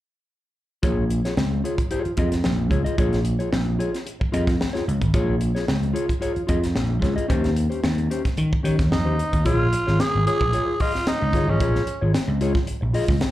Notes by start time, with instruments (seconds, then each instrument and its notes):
0.83 slap bass A#1, clean electric guitar F4 G#4 C#5, kick, closed hi-hat
1.10 muted clean electric guitar stroke, closed hi-hat
1.25 clean electric guitar F4 G#4 C#5, snare, closed hi-hat
1.37 slap bass C#2, snare
1.64 clean electric guitar F4 G#4 C#5, closed hi-hat
1.77 muted clean electric guitar stroke, kick, closed hi-hat
1.91 clean electric guitar F4 G#4 C#5, closed hi-hat
2.04 muted clean electric guitar stroke, muted slap bass stroke, closed hi-hat
2.17 slap bass F2, clean electric guitar F4 G#4 D#5, kick, closed hi-hat
2.32 muted clean electric guitar stroke, snare, closed hi-hat
2.44 slap bass A#1, muted clean electric guitar stroke, snare
2.58 muted clean electric guitar stroke
2.70 slap bass C#2, clean electric guitar F4 G#4 C#5, kick, closed hi-hat
2.84 clean electric guitar F4 G#4 D#5, closed hi-hat
2.98 slap bass A#1, clean electric guitar F4 G#4 C#5, kick, closed hi-hat
3.13 snare, closed hi-hat
3.24 muted clean electric guitar stroke, closed hi-hat
3.39 clean electric guitar F4 G#4 C#5, closed hi-hat
3.53 slap bass A#1, snare
3.79 clean electric guitar F4 G#4 C#5, closed hi-hat
3.93 muted clean electric guitar stroke, snare, closed hi-hat
4.06 muted clean electric guitar stroke, closed hi-hat
4.20 muted clean electric guitar stroke, muted slap bass stroke, kick
4.32 slap bass F2, clean electric guitar F4 G#4 D#5, closed hi-hat
4.47 muted clean electric guitar stroke, kick, snare, closed hi-hat
4.60 muted clean electric guitar stroke, snare
4.73 clean electric guitar F4 G#4 C#5, snare, closed hi-hat
4.87 slap bass C#2, muted clean electric guitar stroke, closed hi-hat
5.02 slap bass G#1, muted clean electric guitar stroke, kick, closed hi-hat
5.14 slap bass A#1, clean electric guitar F4 G#4 C#5, kick, closed hi-hat
5.41 muted clean electric guitar stroke, closed hi-hat
5.55 clean electric guitar F4 G#4 C#5, snare, closed hi-hat
5.67 slap bass C#2, muted clean electric guitar stroke, snare
5.83 closed hi-hat
5.93 clean electric guitar F4 G#4 C#5, closed hi-hat
6.08 muted clean electric guitar stroke, kick, closed hi-hat
6.21 clean electric guitar F4 G#4 C#5, closed hi-hat
6.35 muted clean electric guitar stroke, muted slap bass stroke, closed hi-hat
6.47 slap bass F2, clean electric guitar F4 G#4 D#5, kick, closed hi-hat
6.62 muted clean electric guitar stroke, snare, closed hi-hat
6.74 slap bass A#1, muted clean electric guitar stroke, snare
6.89 muted clean electric guitar stroke
7.01 slap bass C#2, clean electric guitar F4 G#4 C#5, kick, snare, closed hi-hat
7.16 clean electric guitar F4 G#4 D#5, closed hi-hat
7.28 slap bass D#2, clean electric guitar C#4 G4 C5, kick, closed hi-hat
7.44 snare, closed hi-hat
7.56 muted clean electric guitar stroke, closed hi-hat
7.70 clean electric guitar C#4 G4 C5, closed hi-hat
7.84 slap bass D#2, snare
7.98 closed hi-hat
8.10 clean electric guitar C#4 G4 C5, closed hi-hat
8.24 muted clean electric guitar stroke, kick, snare, closed hi-hat
8.37 slap bass D#3, muted clean electric guitar stroke, closed hi-hat
8.52 muted clean electric guitar stroke, kick
8.63 slap bass D#3, clean electric guitar C#4 G4 C#5, closed hi-hat
8.78 slap bass D#2, muted clean electric guitar stroke, kick, snare, closed hi-hat
8.91 slap bass F2, tenor saxophone D#4, muted clean electric guitar stroke, snare
9.05 slap bass D#2, clean electric guitar C#4 G4 C5
9.18 muted clean electric guitar stroke, closed hi-hat
9.33 slap bass D#2, muted clean electric guitar stroke, kick, closed hi-hat
9.45 slap bass A#1, clean electric guitar F4 G#4 C#5, tenor saxophone F4, kick, closed hi-hat
9.72 muted clean electric guitar stroke, closed hi-hat
9.87 slap bass G#1, clean electric guitar F4 G#4 C#5, snare
10.00 tenor saxophone G#4, snare, closed hi-hat
10.15 slap bass G#1
10.26 clean electric guitar F4 G#4 C#5, tenor saxophone G#4, closed hi-hat
10.41 slap bass A#1, kick
10.53 clean electric guitar F4 G#4 C#5, closed hi-hat
10.68 muted clean electric guitar stroke
10.80 clean electric guitar F4 G#4 D#5, tenor saxophone F4, kick, open hi-hat
10.94 muted clean electric guitar stroke, snare
11.07 tenor saxophone D#4, muted clean electric guitar stroke, snare, closed hi-hat
11.21 slap bass C#2, muted clean electric guitar stroke
11.33 slap bass G1, clean electric guitar F4 G#4 C#5, kick, snare, closed hi-hat
11.48 slap bass G#1, tenor saxophone C#4, clean electric guitar F4 G#4 D#5
11.60 slap bass A#1, clean electric guitar F4 G#4 C#5, kick, closed hi-hat
11.75 snare
11.87 muted clean electric guitar stroke, closed hi-hat
12.01 slap bass G#1, clean electric guitar F4 G#4 C#5
12.14 muted slap bass stroke, snare, closed hi-hat
12.28 slap bass C#2
12.41 clean electric guitar F4 G#4 C#5, closed hi-hat
12.55 muted clean electric guitar stroke, kick, snare
12.67 muted clean electric guitar stroke, closed hi-hat
12.81 slap bass A#1, muted clean electric guitar stroke
12.93 clean electric guitar F4 G#4 D#5, open hi-hat
13.07 slap bass C#2, muted clean electric guitar stroke, kick, snare
13.20 muted clean electric guitar stroke, muted slap bass stroke, snare, closed hi-hat